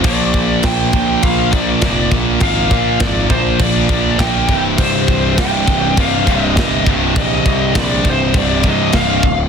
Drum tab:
CC |xxxxxxxx|xxxxxxxx|xxxxxxxx|xxxxxxxx|
SD |--o---o-|--o---o-|--o---o-|--o---o-|
BD |oooooooo|oooooooo|oooooooo|oooooooo|